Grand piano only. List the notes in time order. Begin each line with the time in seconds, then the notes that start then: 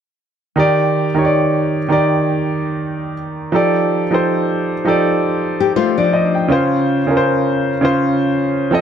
0.56 D#3 D#4 G4 D5
1.14 D#3 D#4 G4 C#5
1.25 D5
1.88 D#3 D#4 G4 D5
3.52 F3 D#4 G4 A4 D5
4.11 F3 D#4 G4 A4 C5
4.84 F3 D#4 G4 A4 D5
5.76 C5
5.98 D5
6.13 D#5
6.35 G5
6.48 C#3 C#4 F4 C5
7.07 C#3 C#4 F4 A#4
7.17 C5
7.81 C#3 C#4 F4 C5
8.71 F3 C4 A4 D#5